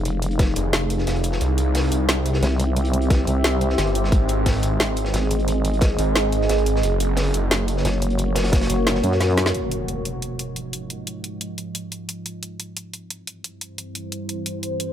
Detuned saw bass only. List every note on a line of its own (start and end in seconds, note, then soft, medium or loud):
0.56 1.06 F1 loud
1.07 1.40 F1 loud
1.41 1.90 C2 loud
1.92 2.41 C2 loud
3.78 4.11 G1 medium
4.12 4.62 G#1 loud
4.63 5.12 G#1 loud
5.99 6.48 G#1 medium
6.49 6.82 G#1 medium
6.83 7.33 F#1 loud
7.34 7.84 F#1 loud